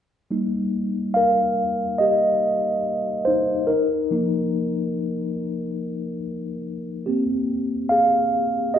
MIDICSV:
0, 0, Header, 1, 2, 480
1, 0, Start_track
1, 0, Key_signature, -3, "major"
1, 0, Tempo, 845070
1, 178, Time_signature, 4, 2, 24, 8
1, 4993, End_track
2, 0, Start_track
2, 0, Title_t, "Tine electric piano"
2, 0, Program_c, 0, 4
2, 174, Note_on_c, 0, 55, 40
2, 176, Note_on_c, 0, 58, 36
2, 179, Note_on_c, 0, 63, 43
2, 269, Control_c, 0, 64, 127
2, 648, Note_on_c, 0, 77, 68
2, 662, Note_on_c, 0, 70, 54
2, 873, Note_off_c, 0, 55, 0
2, 874, Note_off_c, 0, 58, 0
2, 876, Note_off_c, 0, 63, 0
2, 1117, Note_off_c, 0, 70, 0
2, 1127, Note_on_c, 0, 75, 68
2, 1138, Note_on_c, 0, 67, 49
2, 1148, Note_off_c, 0, 77, 0
2, 1590, Note_off_c, 0, 75, 0
2, 1595, Note_off_c, 0, 67, 0
2, 1847, Note_on_c, 0, 72, 75
2, 1860, Note_on_c, 0, 63, 60
2, 2082, Note_off_c, 0, 63, 0
2, 2085, Note_on_c, 0, 70, 72
2, 2099, Note_off_c, 0, 72, 0
2, 2099, Note_on_c, 0, 63, 54
2, 2105, Control_c, 0, 64, 0
2, 2205, Control_c, 0, 64, 127
2, 2333, Note_on_c, 0, 53, 45
2, 2334, Note_off_c, 0, 63, 0
2, 2337, Note_on_c, 0, 58, 40
2, 2341, Note_on_c, 0, 63, 48
2, 3033, Note_off_c, 0, 53, 0
2, 3035, Note_off_c, 0, 58, 0
2, 3036, Note_off_c, 0, 63, 0
2, 3509, Note_off_c, 0, 70, 0
2, 4011, Note_on_c, 0, 67, 41
2, 4015, Note_on_c, 0, 58, 37
2, 4019, Note_on_c, 0, 60, 46
2, 4025, Control_c, 0, 64, 0
2, 4120, Control_c, 0, 64, 127
2, 4483, Note_on_c, 0, 77, 74
2, 4496, Note_on_c, 0, 68, 57
2, 4712, Note_off_c, 0, 67, 0
2, 4714, Note_off_c, 0, 58, 0
2, 4716, Note_off_c, 0, 60, 0
2, 4954, Note_off_c, 0, 68, 0
2, 4965, Note_on_c, 0, 75, 70
2, 4985, Note_off_c, 0, 77, 0
2, 4993, Note_off_c, 0, 75, 0
2, 4993, End_track
0, 0, End_of_file